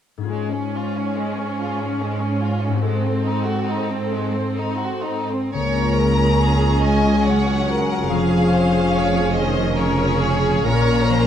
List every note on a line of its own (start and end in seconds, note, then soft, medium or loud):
0.18 2.67 G#2 soft
0.18 2.86 C#4 soft
0.23 2.84 F4 soft
0.23 4.15 G#4 soft
0.29 5.30 G#2 soft
0.29 0.50 G#3 soft
0.29 2.81 C#4 soft
0.29 2.81 G#4 soft
0.51 0.73 C#4 soft
0.74 0.95 F4 soft
0.95 1.17 C#4 soft
1.16 1.38 G#3 soft
1.37 1.59 C#4 soft
1.60 1.81 F4 soft
1.79 2.01 C#4 soft
2.00 2.22 G#3 soft
2.19 2.42 C#4 soft
2.40 2.63 F4 soft
2.61 2.84 C#4 soft
2.68 5.49 G#2 soft
2.72 5.51 C4 soft
2.77 5.54 F#4 soft
2.81 3.03 G#3 soft
2.81 5.29 C4 soft
2.81 5.56 A4 soft
2.81 5.29 A4 soft
3.03 3.25 C4 soft
3.23 3.46 D#4 soft
3.43 3.67 F#4 soft
3.65 3.88 D#4 soft
3.89 4.12 C4 soft
4.10 4.34 G#3 soft
4.34 4.58 C4 soft
4.57 4.82 D#4 soft
4.81 5.06 F#4 soft
5.05 5.30 D#4 soft
5.29 5.53 C4 soft
5.53 8.06 C#2 soft
5.53 8.13 C#3 soft
5.53 6.80 A#3 soft
5.53 8.06 C#4 soft
5.53 8.06 G#4 soft
5.53 5.94 C#5 soft
5.53 6.80 A#5 medium
5.77 6.18 F4 soft
5.96 7.24 G#3 soft
5.96 6.40 A#4 soft
6.19 7.03 F4 soft
6.39 6.83 G#4 soft
6.62 7.45 C#4 soft
6.81 7.27 G#3 soft
6.81 7.66 G#4 soft
6.81 7.25 D#5 soft
6.81 7.26 G#5 soft
7.04 7.87 F4 soft
7.25 8.10 F#3 soft
7.25 10.70 G#3 soft
7.25 7.67 C#5 soft
7.25 8.10 F#5 soft
7.46 8.50 C#4 soft
7.67 8.29 G#4 soft
7.67 8.10 A#4 soft
7.88 9.12 F4 soft
8.09 10.64 F1 soft
8.09 10.63 F2 soft
8.09 11.08 F3 soft
8.09 9.35 F3 medium
8.09 9.74 C#4 soft
8.09 9.74 G#4 soft
8.09 8.52 G#4 soft
8.09 9.35 F5 medium
8.30 8.71 G#4 soft
8.51 9.75 C#4 soft
8.51 8.93 C5 soft
8.72 9.53 G#4 soft
8.92 9.32 C#5 soft
8.92 9.35 C#5 soft
9.13 9.96 F4 soft
9.33 9.77 D#3 soft
9.33 9.76 C5 soft
9.33 10.19 C#5 soft
9.33 9.76 D#5 medium
9.54 10.42 G#4 soft
9.75 10.66 C#3 soft
9.75 11.27 C#4 soft
9.75 10.65 C#4 soft
9.75 10.65 G#4 soft
9.75 10.20 A#4 soft
9.75 10.67 C#5 medium
9.98 10.86 F4 soft
10.21 10.67 G#4 soft
10.21 11.27 C#5 soft
10.44 10.70 G#4 soft
10.66 11.27 A#1 soft
10.66 11.27 A#2 soft
10.66 11.27 A#3 medium
10.66 11.27 C#4 soft
10.66 11.27 A#4 soft
10.66 11.08 C#5 medium
10.66 11.27 A#5 medium
10.88 11.27 F4 soft
11.08 11.27 F3 soft
11.08 11.27 C5 soft